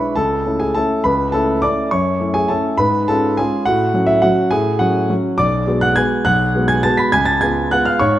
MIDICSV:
0, 0, Header, 1, 2, 480
1, 0, Start_track
1, 0, Tempo, 290557
1, 273, Time_signature, 3, 2, 24, 8
1, 13533, End_track
2, 0, Start_track
2, 0, Title_t, "Grand piano"
2, 0, Program_c, 0, 0
2, 0, Note_on_c, 0, 56, 46
2, 0, Note_on_c, 0, 62, 48
2, 0, Note_on_c, 0, 64, 52
2, 0, Note_on_c, 0, 71, 71
2, 0, Note_on_c, 0, 83, 92
2, 216, Note_off_c, 0, 56, 0
2, 219, Note_off_c, 0, 62, 0
2, 224, Note_off_c, 0, 64, 0
2, 230, Note_off_c, 0, 71, 0
2, 256, Note_off_c, 0, 83, 0
2, 257, Note_on_c, 0, 81, 102
2, 275, Note_on_c, 0, 37, 60
2, 276, Note_on_c, 0, 69, 77
2, 541, Control_c, 0, 64, 127
2, 744, Note_off_c, 0, 37, 0
2, 763, Note_on_c, 0, 57, 46
2, 766, Note_on_c, 0, 61, 47
2, 770, Note_on_c, 0, 64, 49
2, 953, Note_off_c, 0, 69, 0
2, 984, Note_on_c, 0, 80, 84
2, 994, Note_off_c, 0, 81, 0
2, 998, Note_on_c, 0, 68, 65
2, 1203, Note_off_c, 0, 57, 0
2, 1204, Note_off_c, 0, 61, 0
2, 1207, Note_off_c, 0, 64, 0
2, 1229, Note_off_c, 0, 68, 0
2, 1232, Note_on_c, 0, 81, 98
2, 1240, Note_off_c, 0, 80, 0
2, 1249, Note_on_c, 0, 69, 71
2, 1259, Note_on_c, 0, 61, 48
2, 1260, Note_on_c, 0, 57, 48
2, 1268, Control_c, 0, 64, 0
2, 1268, Note_on_c, 0, 64, 50
2, 1685, Note_off_c, 0, 57, 0
2, 1685, Note_off_c, 0, 61, 0
2, 1689, Note_off_c, 0, 64, 0
2, 1693, Note_off_c, 0, 69, 0
2, 1716, Note_on_c, 0, 83, 97
2, 1718, Note_off_c, 0, 81, 0
2, 1734, Note_on_c, 0, 37, 65
2, 1735, Note_on_c, 0, 71, 74
2, 2039, Control_c, 0, 64, 127
2, 2173, Note_off_c, 0, 71, 0
2, 2185, Note_on_c, 0, 81, 93
2, 2191, Note_off_c, 0, 37, 0
2, 2196, Note_off_c, 0, 83, 0
2, 2208, Note_on_c, 0, 69, 73
2, 2212, Note_on_c, 0, 57, 45
2, 2216, Note_on_c, 0, 61, 46
2, 2222, Note_on_c, 0, 64, 51
2, 2646, Note_off_c, 0, 57, 0
2, 2648, Note_off_c, 0, 61, 0
2, 2651, Note_off_c, 0, 64, 0
2, 2658, Note_off_c, 0, 69, 0
2, 2674, Note_on_c, 0, 86, 105
2, 2680, Note_off_c, 0, 81, 0
2, 2693, Note_on_c, 0, 74, 84
2, 2697, Note_on_c, 0, 57, 47
2, 2710, Note_on_c, 0, 61, 45
2, 2711, Control_c, 0, 64, 0
2, 2712, Note_on_c, 0, 64, 55
2, 3123, Note_off_c, 0, 57, 0
2, 3130, Note_off_c, 0, 61, 0
2, 3131, Note_off_c, 0, 64, 0
2, 3135, Note_off_c, 0, 74, 0
2, 3158, Note_off_c, 0, 86, 0
2, 3159, Note_on_c, 0, 85, 92
2, 3175, Note_on_c, 0, 42, 66
2, 3181, Note_on_c, 0, 73, 70
2, 3483, Control_c, 0, 64, 127
2, 3630, Note_off_c, 0, 42, 0
2, 3637, Note_on_c, 0, 57, 47
2, 3652, Note_on_c, 0, 61, 49
2, 3654, Note_on_c, 0, 64, 53
2, 3842, Note_off_c, 0, 73, 0
2, 3864, Note_on_c, 0, 80, 97
2, 3878, Note_on_c, 0, 68, 74
2, 3881, Note_off_c, 0, 85, 0
2, 4081, Note_off_c, 0, 57, 0
2, 4090, Note_off_c, 0, 61, 0
2, 4091, Note_off_c, 0, 64, 0
2, 4105, Note_on_c, 0, 81, 87
2, 4111, Note_off_c, 0, 68, 0
2, 4122, Note_off_c, 0, 80, 0
2, 4128, Note_on_c, 0, 57, 48
2, 4128, Note_on_c, 0, 69, 63
2, 4140, Note_on_c, 0, 61, 49
2, 4140, Note_on_c, 0, 64, 52
2, 4145, Control_c, 0, 64, 0
2, 4561, Note_off_c, 0, 57, 0
2, 4568, Note_off_c, 0, 61, 0
2, 4568, Note_off_c, 0, 64, 0
2, 4576, Note_off_c, 0, 69, 0
2, 4585, Note_on_c, 0, 83, 110
2, 4598, Note_off_c, 0, 81, 0
2, 4599, Note_on_c, 0, 44, 67
2, 4606, Note_on_c, 0, 71, 80
2, 4886, Control_c, 0, 64, 127
2, 5052, Note_off_c, 0, 71, 0
2, 5068, Note_off_c, 0, 44, 0
2, 5075, Note_off_c, 0, 83, 0
2, 5088, Note_on_c, 0, 81, 100
2, 5104, Note_on_c, 0, 69, 77
2, 5109, Note_on_c, 0, 56, 46
2, 5121, Note_on_c, 0, 61, 50
2, 5127, Note_on_c, 0, 65, 57
2, 5537, Note_off_c, 0, 56, 0
2, 5543, Note_off_c, 0, 61, 0
2, 5547, Note_off_c, 0, 65, 0
2, 5548, Note_off_c, 0, 69, 0
2, 5574, Note_off_c, 0, 81, 0
2, 5574, Note_on_c, 0, 80, 98
2, 5591, Control_c, 0, 64, 0
2, 5597, Note_on_c, 0, 56, 51
2, 5597, Note_on_c, 0, 68, 79
2, 5605, Note_on_c, 0, 65, 59
2, 5607, Note_on_c, 0, 61, 51
2, 6014, Note_off_c, 0, 56, 0
2, 6018, Note_off_c, 0, 65, 0
2, 6019, Note_off_c, 0, 61, 0
2, 6028, Note_off_c, 0, 68, 0
2, 6038, Note_on_c, 0, 78, 106
2, 6049, Note_off_c, 0, 80, 0
2, 6060, Note_on_c, 0, 66, 78
2, 6063, Note_on_c, 0, 45, 73
2, 6295, Control_c, 0, 64, 127
2, 6501, Note_off_c, 0, 66, 0
2, 6508, Note_off_c, 0, 45, 0
2, 6511, Note_on_c, 0, 54, 53
2, 6522, Note_on_c, 0, 61, 52
2, 6526, Note_on_c, 0, 66, 56
2, 6715, Note_on_c, 0, 76, 104
2, 6736, Note_on_c, 0, 64, 77
2, 6751, Note_off_c, 0, 78, 0
2, 6953, Note_off_c, 0, 54, 0
2, 6959, Note_off_c, 0, 61, 0
2, 6961, Note_off_c, 0, 66, 0
2, 6969, Note_on_c, 0, 78, 100
2, 6975, Note_off_c, 0, 64, 0
2, 6983, Note_off_c, 0, 76, 0
2, 6987, Note_on_c, 0, 66, 80
2, 6992, Note_on_c, 0, 54, 55
2, 6994, Note_on_c, 0, 61, 51
2, 7027, Control_c, 0, 64, 0
2, 7432, Note_off_c, 0, 54, 0
2, 7433, Note_off_c, 0, 61, 0
2, 7444, Note_off_c, 0, 66, 0
2, 7444, Note_on_c, 0, 80, 109
2, 7469, Note_off_c, 0, 78, 0
2, 7469, Note_on_c, 0, 68, 86
2, 7470, Note_on_c, 0, 45, 72
2, 7747, Control_c, 0, 64, 127
2, 7912, Note_off_c, 0, 68, 0
2, 7915, Note_on_c, 0, 78, 93
2, 7930, Note_on_c, 0, 66, 74
2, 7931, Note_off_c, 0, 45, 0
2, 7933, Note_off_c, 0, 80, 0
2, 7939, Note_on_c, 0, 61, 53
2, 7942, Note_on_c, 0, 54, 52
2, 8379, Note_off_c, 0, 61, 0
2, 8381, Note_off_c, 0, 54, 0
2, 8389, Note_off_c, 0, 66, 0
2, 8416, Note_off_c, 0, 78, 0
2, 8422, Note_on_c, 0, 54, 56
2, 8434, Note_on_c, 0, 61, 57
2, 8439, Note_on_c, 0, 66, 59
2, 8453, Control_c, 0, 64, 0
2, 8856, Note_off_c, 0, 54, 0
2, 8863, Note_off_c, 0, 61, 0
2, 8866, Note_off_c, 0, 66, 0
2, 8883, Note_on_c, 0, 86, 113
2, 8905, Note_on_c, 0, 74, 90
2, 8909, Note_on_c, 0, 35, 72
2, 9243, Control_c, 0, 64, 127
2, 9363, Note_off_c, 0, 35, 0
2, 9367, Note_on_c, 0, 56, 51
2, 9380, Note_on_c, 0, 59, 52
2, 9384, Note_on_c, 0, 66, 57
2, 9565, Note_off_c, 0, 74, 0
2, 9603, Note_on_c, 0, 90, 108
2, 9604, Note_off_c, 0, 86, 0
2, 9622, Note_on_c, 0, 78, 84
2, 9807, Note_off_c, 0, 56, 0
2, 9814, Note_off_c, 0, 59, 0
2, 9816, Note_off_c, 0, 66, 0
2, 9840, Note_on_c, 0, 92, 117
2, 9846, Note_off_c, 0, 78, 0
2, 9854, Note_off_c, 0, 90, 0
2, 9865, Note_on_c, 0, 80, 85
2, 9869, Note_on_c, 0, 56, 56
2, 9871, Note_on_c, 0, 59, 54
2, 9873, Control_c, 0, 64, 0
2, 9878, Note_on_c, 0, 66, 58
2, 10292, Note_off_c, 0, 56, 0
2, 10293, Note_off_c, 0, 59, 0
2, 10298, Note_off_c, 0, 66, 0
2, 10305, Note_off_c, 0, 80, 0
2, 10320, Note_on_c, 0, 90, 124
2, 10325, Note_off_c, 0, 92, 0
2, 10336, Note_on_c, 0, 78, 89
2, 10346, Note_on_c, 0, 35, 76
2, 10580, Control_c, 0, 64, 127
2, 10801, Note_off_c, 0, 35, 0
2, 10816, Note_on_c, 0, 56, 55
2, 10831, Note_on_c, 0, 59, 52
2, 10836, Note_on_c, 0, 66, 59
2, 11007, Note_off_c, 0, 78, 0
2, 11035, Note_on_c, 0, 92, 114
2, 11049, Note_off_c, 0, 90, 0
2, 11056, Note_on_c, 0, 80, 81
2, 11259, Note_off_c, 0, 56, 0
2, 11267, Note_off_c, 0, 59, 0
2, 11270, Note_off_c, 0, 66, 0
2, 11286, Note_on_c, 0, 93, 118
2, 11287, Note_off_c, 0, 80, 0
2, 11294, Note_off_c, 0, 92, 0
2, 11300, Note_on_c, 0, 81, 93
2, 11311, Note_on_c, 0, 56, 52
2, 11314, Note_on_c, 0, 59, 54
2, 11319, Note_on_c, 0, 66, 63
2, 11320, Control_c, 0, 64, 0
2, 11522, Note_on_c, 0, 95, 106
2, 11529, Note_off_c, 0, 81, 0
2, 11539, Note_off_c, 0, 93, 0
2, 11547, Note_on_c, 0, 83, 88
2, 11738, Note_off_c, 0, 56, 0
2, 11740, Note_off_c, 0, 59, 0
2, 11743, Note_off_c, 0, 66, 0
2, 11766, Note_off_c, 0, 83, 0
2, 11766, Note_on_c, 0, 92, 123
2, 11770, Note_off_c, 0, 95, 0
2, 11786, Note_on_c, 0, 80, 98
2, 11790, Note_on_c, 0, 37, 71
2, 11985, Note_on_c, 0, 93, 115
2, 12002, Note_off_c, 0, 80, 0
2, 12006, Note_on_c, 0, 81, 81
2, 12008, Note_off_c, 0, 92, 0
2, 12035, Control_c, 0, 64, 127
2, 12234, Note_off_c, 0, 81, 0
2, 12240, Note_on_c, 0, 92, 114
2, 12241, Note_off_c, 0, 93, 0
2, 12245, Note_off_c, 0, 37, 0
2, 12253, Note_on_c, 0, 80, 81
2, 12257, Note_on_c, 0, 56, 52
2, 12268, Note_on_c, 0, 59, 52
2, 12269, Note_on_c, 0, 65, 58
2, 12706, Note_off_c, 0, 56, 0
2, 12712, Note_off_c, 0, 59, 0
2, 12713, Note_off_c, 0, 65, 0
2, 12719, Note_off_c, 0, 80, 0
2, 12743, Note_on_c, 0, 90, 114
2, 12748, Note_off_c, 0, 92, 0
2, 12762, Note_on_c, 0, 78, 83
2, 12764, Note_on_c, 0, 59, 57
2, 12765, Note_on_c, 0, 56, 53
2, 12772, Control_c, 0, 64, 0
2, 12772, Note_on_c, 0, 65, 58
2, 12975, Note_on_c, 0, 89, 100
2, 12985, Note_on_c, 0, 77, 82
2, 12988, Note_off_c, 0, 78, 0
2, 12995, Note_off_c, 0, 90, 0
2, 13193, Note_off_c, 0, 56, 0
2, 13193, Note_off_c, 0, 59, 0
2, 13197, Note_off_c, 0, 65, 0
2, 13207, Note_on_c, 0, 85, 108
2, 13211, Note_off_c, 0, 77, 0
2, 13223, Note_off_c, 0, 89, 0
2, 13227, Note_on_c, 0, 73, 85
2, 13228, Note_on_c, 0, 44, 69
2, 13521, Control_c, 0, 64, 127
2, 13533, Note_off_c, 0, 44, 0
2, 13533, Note_off_c, 0, 73, 0
2, 13533, Note_off_c, 0, 85, 0
2, 13533, End_track
0, 0, End_of_file